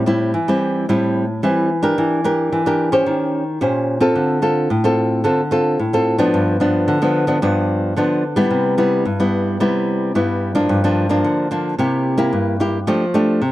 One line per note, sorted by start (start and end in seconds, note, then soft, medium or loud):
0.00 0.32 A2 medium
0.06 0.32 G3 medium
0.06 0.32 C4 medium
0.06 0.33 E4 medium
0.34 0.86 E3 medium
0.48 0.84 G3 medium
0.48 0.85 C4 soft
0.48 0.85 E4 medium
0.89 1.40 A2 medium
0.89 1.24 G3 medium
0.89 1.24 C4 medium
0.89 1.24 E4 medium
1.43 1.95 E3 medium
1.43 1.69 G3 soft
1.43 1.69 C4 soft
1.43 1.69 E4 medium
1.82 2.20 D4 medium
1.82 2.20 G4 medium
1.82 2.20 A#4 medium
1.98 2.49 E3 medium
2.24 2.61 D4 medium
2.24 2.61 G4 medium
2.24 2.61 A#4 medium
2.52 3.04 E3 medium
2.66 2.89 D4 medium
2.66 2.89 G4 soft
2.66 2.89 A#4 medium
2.92 3.43 C#4 medium
2.92 3.43 G4 medium
2.92 3.43 C5 medium
3.06 3.58 D#3 medium
3.61 4.13 A#2 medium
3.61 3.97 C#4 medium
3.61 3.98 G4 soft
3.61 3.98 C5 medium
4.00 4.38 C4 medium
4.00 4.38 F4 medium
4.00 4.38 A4 medium
4.16 4.67 D3 medium
4.42 4.68 C4 soft
4.42 4.68 F4 medium
4.42 4.68 A4 medium
4.70 5.22 A2 medium
4.84 5.20 C4 medium
4.84 5.21 F4 medium
4.84 5.21 A4 medium
5.24 5.76 D3 medium
5.24 5.40 C4 medium
5.24 5.40 F4 soft
5.24 5.41 A4 medium
5.51 5.77 C4 medium
5.51 5.77 F4 medium
5.51 5.77 A4 medium
5.79 6.31 A2 medium
5.93 6.16 C4 medium
5.93 6.16 F4 medium
5.93 6.16 A4 medium
6.18 6.56 F3 medium
6.18 6.56 B3 medium
6.18 6.56 D4 medium
6.34 6.85 G2 medium
6.60 6.97 F3 medium
6.60 6.97 B3 medium
6.60 6.97 D4 medium
6.88 7.40 D3 medium
7.02 7.25 F3 medium
7.02 7.25 B3 soft
7.02 7.25 D4 medium
7.27 7.37 F3 medium
7.27 7.38 B3 medium
7.27 7.38 D4 medium
7.42 7.94 G2 medium
7.42 7.93 F3 soft
7.42 7.93 B3 medium
7.42 7.93 D4 medium
7.96 8.49 D3 medium
7.96 8.23 F3 soft
7.96 8.23 B3 soft
7.96 8.23 D4 medium
8.36 8.74 G3 medium
8.36 8.74 B3 medium
8.36 8.74 E4 medium
8.50 9.03 C3 medium
8.78 9.04 G3 medium
8.78 9.04 B3 medium
8.78 9.04 E4 medium
9.05 9.58 G2 medium
9.20 9.56 G3 medium
9.20 9.57 B3 soft
9.20 9.57 E4 medium
9.60 10.12 C3 medium
9.60 10.11 G3 medium
9.60 10.11 B3 medium
9.60 10.11 E4 medium
10.15 10.67 G2 medium
10.15 10.52 G3 medium
10.15 10.52 B3 medium
10.15 10.52 E4 soft
10.55 10.83 F3 medium
10.55 10.83 A#3 medium
10.55 10.83 D4 medium
10.69 11.21 G2 medium
10.84 11.07 F3 medium
10.84 11.07 A#3 medium
10.84 11.07 D4 medium
11.09 11.47 F3 medium
11.09 11.47 A#3 medium
11.09 11.47 D4 medium
11.24 11.76 D3 medium
11.51 11.74 F3 soft
11.51 11.74 A#3 medium
11.51 11.74 D4 medium
11.79 12.31 C3 medium
11.79 12.15 A#3 soft
11.79 12.15 E4 soft
11.79 12.16 G4 medium
12.18 12.55 A#3 medium
12.18 12.55 E4 medium
12.18 12.56 G4 medium
12.33 12.85 G2 medium
12.60 12.78 A#3 soft
12.60 12.78 E4 medium
12.60 12.78 G4 medium
12.87 13.39 F3 medium
12.87 13.03 A3 medium
12.87 13.04 D4 medium
12.87 13.04 G4 medium
13.14 13.40 A3 medium
13.14 13.40 D4 medium
13.14 13.41 G4 medium
13.42 13.52 C3 medium